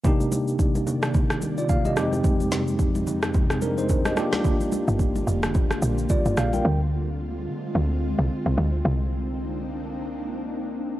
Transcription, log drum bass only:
X:1
M:4/4
L:1/16
Q:"Swing 16ths" 1/4=109
K:Cm
V:1 name="Log drum bass" clef=bass
z16 | z16 | z3 G,,,3 F,,,4 B,,,2 z G,,, B,,,2 | D,,6 D,2 D,,3 C,, z C,, D,,2 |
C,,16 |]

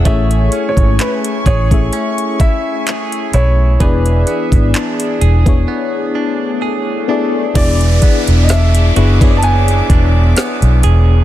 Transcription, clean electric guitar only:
X:1
M:4/4
L:1/16
Q:"Swing 16ths" 1/4=64
K:Emix
V:1 name="Clean electric guitar"
[A,G]2 C2 E2 G2 C2 E2 G2 E2 | [E,G]2 B,2 D2 G2 B,2 D2 G2 D2 | E,2 B,2 D2 F G B,2 D2 B,2 G2 |]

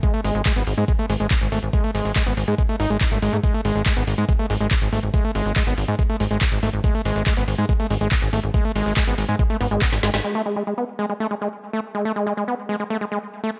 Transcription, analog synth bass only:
X:1
M:4/4
L:1/16
Q:1/4=141
K:G#phr
V:1 name="Analog synth bass" clef=bass
z2 G,,, G,,, z G,,, G,,, G,, z2 G,,, G,,, z G,,, G,,, G,,, | z2 G,,, G,,, z G,,, G,,, G,, z2 G,,, G,,, z G,,, G,,, G,, | z2 G,,, G,,, z G,,, G,,, G,, z2 G,,, G,,, z G,,, G,,, G,,, | z2 G,,, G,,, z G,,, G,,, G,, z2 G,,, G,,, z G,,, G,,, G,,, |
z2 G,,, G,,, z G,,, G,,, G,, z2 G,,, G,,, z G,,, G,,, G,,, | z2 G,,, G,,, z G,,, G,,, G,, z2 G,,, G,,, z G,,, G,,, G,,, | z16 | z16 |]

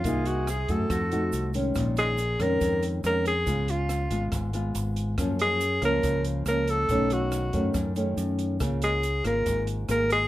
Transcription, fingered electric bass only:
X:1
M:4/4
L:1/8
Q:1/4=140
K:Bbm
V:1 name="Fingered electric bass" clef=bass
C,,3 G,, F,,2 C,,2 | B,,,3 F,, F,,2 F,,2 | D,,3 A,,, A,,,2 A,,,2 | G,,3 D,, D,,2 D,,2 |
=B,,,3 ^F,, F,,2 F,,2 | D,,3 A,,, A,,,2 A,,,2 |]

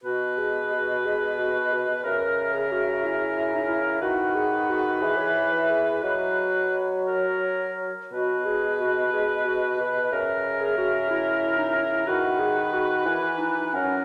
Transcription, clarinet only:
X:1
M:3/4
L:1/8
Q:1/4=179
K:B
V:1 name="Clarinet"
F2 G2 F2 | G2 F2 B2 | A3 G F2 | E3 D E2 |
F2 G2 F2 | G c2 B G2 | F6- | F4- F z |
F2 G2 F2 | G2 F2 B2 | A3 G F2 | E3 D E2 |
F2 G2 F2 | E2 D2 C2 |]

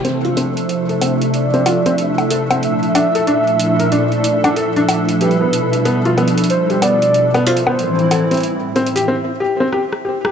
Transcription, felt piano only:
X:1
M:4/4
L:1/16
Q:"Swing 16ths" 1/4=93
K:Dm
V:1 name="Felt piano"
C F C z2 A C z2 C F C z2 A C | z2 D A D z2 B D z2 D A D z2 | G =B, z2 B, F B, z2 G B, z2 B, F B, | z2 A C z2 C G C z G C G z G G |]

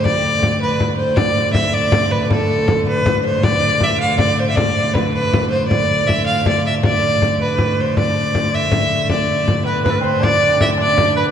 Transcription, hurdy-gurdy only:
X:1
M:6/8
L:1/8
Q:3/8=106
K:Am
V:1 name="Hurdy-gurdy" clef=bass
[D,A,]6 | [D,A,]6- | [D,A,]6- | [D,A,]6- |
[D,A,]6 | [D,A,]6- | [D,A,]6- | [D,A,]6- |
[D,A,]6 | [D,A,]6 |]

